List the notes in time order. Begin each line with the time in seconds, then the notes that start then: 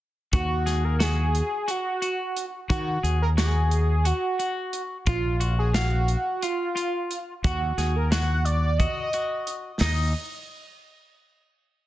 0.33 D#2 F#4, kick, closed hi-hat
0.66 G#4, snare, closed hi-hat
0.84 A#4
1.00 F#4 G#4, snare, closed hi-hat
1.35 closed hi-hat
1.68 F#4, closed hi-hat
2.02 F#4, closed hi-hat
2.37 closed hi-hat
2.70 D#3 F#4, kick, closed hi-hat
3.03 D#2 G#4, closed hi-hat
3.22 A#4
3.37 F#4 G#4, snare, closed hi-hat
3.71 closed hi-hat
4.05 F#4, closed hi-hat
4.39 F#4, closed hi-hat
4.73 closed hi-hat
5.06 A#1 F4, kick, closed hi-hat
5.40 F#4, closed hi-hat
5.59 G#4
5.74 F#4 F5, snare, closed hi-hat
6.08 closed hi-hat
6.42 F4, closed hi-hat
6.76 F4, closed hi-hat
7.11 closed hi-hat
7.44 D#2 F#4, kick, closed hi-hat
7.77 D#2 G#4, snare, closed hi-hat
7.96 A#4
8.11 F#4 F#5, snare, closed hi-hat
8.45 D5, closed hi-hat
8.78 F#4 D#5, kick, closed hi-hat
9.13 F#4, closed hi-hat
9.47 closed hi-hat
9.81 D#2 D#4 D#5, snare, open hi-hat